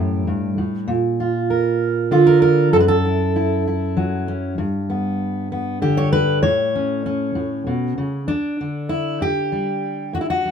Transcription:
Already playing: F#2 A2 E4 G4
0.27 G2
0.58 A2
0.88 A#2
1.20 F4
1.50 A#4
2.11 D3 F4
2.27 A#4
2.42 A#4
2.73 F#2 A4
2.80 B4
2.88 A4
3.05 E4
3.36 E4
3.67 E4
3.97 F#3
4.28 C#4
4.58 G2
4.90 B3
5.52 B3
5.82 D3 G4
5.97 C#5
6.13 B4
6.43 A2 C#5
6.75 C#4
7.06 C#4
7.35 A2
7.67 B2
7.98 C#3
8.28 D2 D4
8.61 D3
8.89 E4
9.21 G2 G4
9.52 G3
10.13 G2 F#4
10.21 E4
10.30 F#4
10.45 G3

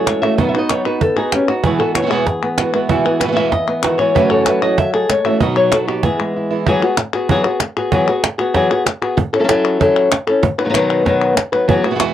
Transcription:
Already playing: E3 A3 C#4 F#4 A4
0.06 G#3 C#5, cajon slap, clap
0.22 E3 A3 C#4 F#4 E5
0.38 B2 F#3 B3 D#4 F#4 D#5, cajon bass
0.49 E5
0.54 B3 D#4 F#4
0.58 D#5
0.69 F#3 B3 D#4 F#4 C#5, cajon slap, clap
0.86 B3 D#4 F#4 B4
1.01 A4, muted nylon-string guitar stroke, cajon bass
1.16 B3 D#4 F#4 G#4
1.32 C#4 G4, cajon slap, clap
1.48 B3 D#4 F#4, cajon slap
1.64 E2 B2 E3 G#3 B3 F#4 G#4, cajon bass
1.79 E3 G#3 B3 F#4 A4
1.94 E3 G#3 B3 F#4 C#5, cajon slap, clap
2.02 B2 E3 G#3 B3 F#4
2.07 B2 E3 G#3 B3 F#4 G#4
2.11 E2 B2 E3 G#3 B3 F#4
2.27 muted nylon-string guitar stroke, cajon bass, cajon slap
2.43 B3
2.58 E3 G#3 B3 F#4 B4, cajon slap, clap
2.74 E3 G#3 B3 F#4
2.89 E2 B2 E3 G#3 B3 F#4 E5, cajon bass
3.04 E3 G#3 B3 F#4 G#4
3.20 B2 E3 G#3 B3 F#4 B4, cajon slap, clap
3.24 B2 E3 G#3 F#4
3.28 B2 E3 G#3 B3 F#4
3.33 E2 B2 B3 F#4 E5
3.37 E3 G#3 B3 F#4
3.51 D#5, muted nylon-string guitar stroke, cajon bass, cajon slap
3.68 B3
3.83 D#3 E3 G#3 B3 F#4, cajon slap, clap
3.98 E3 G#3 B3 F#4 C#5, cajon slap
4.15 F#2 C#3 E3 F#3 A3 C#4 F#4 B4, cajon bass
4.31 A4 C#5
4.46 E3 A3 C#4 F#4 B4, cajon slap, clap
4.62 E3 A3 C#4 F#4 D#5, cajon slap
4.78 E5, muted nylon-string guitar stroke, cajon bass
4.93 G#4 A4
5.09 G#3 C#5, cajon slap, clap
5.24 E3 A3 C#4 F#4 E5, cajon slap
5.40 B2 F#3 B3 D#4 F#4 D#5, cajon bass
5.56 F#3 C#5
5.72 F#3 B3 D#4 F#4 A4, cajon slap, clap
5.87 B3 D#4 F#4 G4, cajon slap
6.03 E3 G#3 B3 E4 G#4, muted nylon-string guitar stroke, cajon bass
6.20 G#3
6.36 E4
6.50 E3 G#3 B3 E4
6.67 E3 F#3 B3 F#4 G#4, cajon bass
6.83 B3 F#4 G#4
6.97 muted nylon-string guitar stroke, cajon slap, clap
7.13 B3 F#4 G#4, cajon slap
7.29 E3 F#3 B3 F#4 G#4, cajon bass
7.44 B3 F#4 G#4
7.60 muted nylon-string guitar stroke, cajon slap, clap
7.77 B3 F#4 G#4
7.92 E3 F#3 B3 F#4 G#4, cajon bass
8.08 B3 F#4 G#4
8.24 muted nylon-string guitar stroke, cajon slap, clap
8.38 B3 F#4 G#4
8.54 E3 F#3 B3 F#4 G#4, cajon bass, cajon slap
8.70 B3 F#4 G#4
8.86 muted nylon-string guitar stroke, cajon slap, clap
9.02 B3 F#4 G#4
9.17 muted nylon-string guitar stroke, cajon bass
9.33 C#4 E4 A4
9.39 F#3 C#4 E4 A4
9.44 F#3 C#4 E4 A4
9.48 F#3 C#4 E4 A4, cajon slap, clap
9.80 F#3 C#4 E4 A4, cajon bass
10.11 muted nylon-string guitar stroke, cajon slap, clap
10.27 C#4 E4 A4
10.43 muted nylon-string guitar stroke, cajon bass
10.58 F#3 B3 D#4 B4
10.64 D#3 F#3 B3 D#4 B4
10.69 D#3 F#3 B3 D#4 B4
10.74 B2 D#3 F#3 B3 D#4 B4, cajon slap, clap
11.05 B2 D#3 F#3 B3 D#4 B4, cajon bass, cajon slap
11.36 muted nylon-string guitar stroke, cajon slap, clap
11.52 F#3 B3 D#4 B4, cajon slap
11.68 E3 F#3 B3 F#4 G#4, muted nylon-string guitar stroke, cajon bass
11.83 E3 G#3 B3 F#4 G#4
11.91 B2 E3 G#3 B3 F#4
11.95 B2 E3 G#3 B3 F#4, muted nylon-string guitar stroke
12.00 E2 B2 E3 G#3 B3 F#4, cajon slap, clap

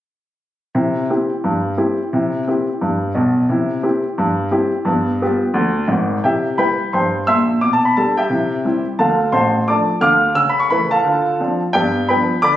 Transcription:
0.75 C3 E4
1.10 C4 E4 G4
1.44 G2
1.78 C4 E4 G4
2.13 C3 E4
2.47 C4 E4 G4
2.81 G2
3.15 B1 B2
3.49 C3 E4
3.83 C4 E4 G4
4.18 G2
4.51 C4 E4 G4
4.85 G2 B3
5.22 B3 F4 G4
5.54 D2
5.88 G#1 G#2
6.24 C3 E4 G4 E5 G5
6.58 G3 E4 G4 B4 G5 B5
6.93 G2 C5 G5 C6
7.27 A#1 A#2 E5 C6 E6
7.61 B2 D6
7.73 A5
7.85 B5
7.97 G3 D4 G4 A4 A5
8.17 G4 E5 G5
8.30 C3 E4
8.65 G3 C4 E4
8.99 D2 D3 A4 F5 A5
9.32 A1 A2 C5 A5 C6
9.68 F3 A3 D4 D5 A5 D6
10.01 D2 D3 F5 D6 F6
10.35 C#3 E6
10.49 B5
10.60 C#6
10.70 E3 A3 E4 B4 B5
10.91 A4 F5 A5
11.04 D3 F4
11.40 F3 C4 D4
11.73 G2 B3 G4 D5 G5
12.09 F3 B3 D4 B4 G5 B5
12.42 D3 D5 B5 D6

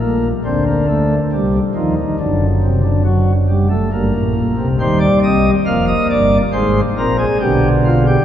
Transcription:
Already playing: A#1 A#2
0.00 A#3
0.45 D2 D3 C4
0.67 A#3
0.88 A3
1.32 C2 C3 G3
1.75 D#2 D#3 F3
1.97 D#3
2.20 F#1 F#2 D3
2.63 C3
2.83 D3
3.05 F#3
3.49 G3
3.70 A3
3.92 G1 G2 A#3
4.14 A1 A2
4.35 A#1 A#2
4.57 C2 C3
4.80 D#2 D#3 G3 C5
5.00 D5
5.23 C2 C3 D#5
5.66 F1 F2 A#3 F5
5.88 D#5
6.10 G1 G2 D5
6.53 G#1 G#2 G#3 C5
6.98 A#1 A#2 C4 A#4
7.19 G#4
7.40 B1 B2 D3 G4
7.85 F4
8.07 G4

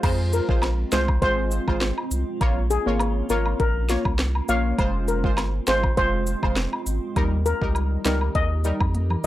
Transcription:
0.03 F2 G#3 C4 F4 C5, kick, closed hi-hat, crash, high woodblock
0.33 A#4, closed hi-hat, cabasa
0.49 A#1 G#3 F4 C5, kick
0.62 cross-stick, snare, closed hi-hat, high woodblock
0.92 C2 G#3 F4 C5, cross-stick, snare, closed hi-hat, cabasa
1.08 kick, high woodblock
1.22 G#1 G#3 F4 C5, kick, closed hi-hat
1.51 closed hi-hat, cabasa
1.68 G#1 G#3 F4 C5, kick, high woodblock
1.81 cross-stick, snare, closed hi-hat
1.98 high woodblock
2.11 C2, closed hi-hat, cabasa
2.41 A#1 A#3 C#4 F4 C#5, kick, closed hi-hat, high woodblock
2.70 G#4, closed hi-hat, cabasa
2.86 G#1 A#3 F4 C#5
3.00 cross-stick, closed hi-hat, high woodblock
3.29 G#1 A#3 F4 A#4 C#5, closed hi-hat, cabasa
3.46 high woodblock
3.60 A#1 A#4, kick, closed hi-hat
3.89 A#3 F4 C#5, snare, closed hi-hat, cabasa
4.05 C2, kick, high woodblock
4.19 cross-stick, snare, closed hi-hat
4.35 high woodblock
4.48 A#1 A#3 F4 C#5 F5, closed hi-hat, cabasa
4.78 F1 G#3 C4 F4 C5, kick, closed hi-hat, high woodblock
5.08 A#4, closed hi-hat, cabasa
5.24 G1 G#3 F4 C5, kick
5.37 cross-stick, snare, closed hi-hat, high woodblock
5.67 G#1 G#3 F4 C5, cross-stick, snare, closed hi-hat, cabasa
5.83 kick, high woodblock
5.97 F1 G#3 F4 C5, kick, closed hi-hat
6.27 closed hi-hat, cabasa
6.43 F1 G#3 F4 C5, kick, high woodblock
6.56 cross-stick, snare, closed hi-hat
6.73 high woodblock
6.86 G#1, closed hi-hat, cabasa
7.16 D#2 D#3 G3 D#4 G4 A#4, kick, closed hi-hat, high woodblock
7.46 A#4, closed hi-hat, cabasa
7.61 C#2 G3 D#4 A#4, kick
7.75 closed hi-hat, high woodblock
8.05 C#2 G3 D#4 A#4, cross-stick, snare, closed hi-hat, cabasa
8.21 high woodblock
8.35 D#2 D#5, kick, closed hi-hat
8.64 G3 D#4 A#4, closed hi-hat, cabasa
8.80 F2, kick, high woodblock
8.94 closed hi-hat, high tom
9.10 mid tom, high woodblock

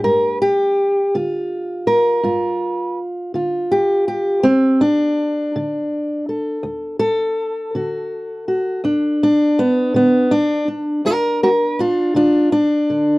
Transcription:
0.04 G2 A#4
0.42 G4
1.15 D3 F4
1.87 A#4
2.23 G2 F4
3.34 D3 F4
3.72 G4
4.08 G4
4.43 D2 C4
4.81 D4
5.56 D3
6.29 A4
6.63 D2
6.99 A4
7.75 D3 F#4
8.48 F#4
8.84 D2 D4
9.23 D4
9.59 B3
9.94 D3 B3
10.31 D4
10.68 D4
11.05 D2 F#4 A#4
11.43 F#4 A#4
11.79 D4 F4
12.14 D3 D4 F4
12.52 D4
12.90 D3

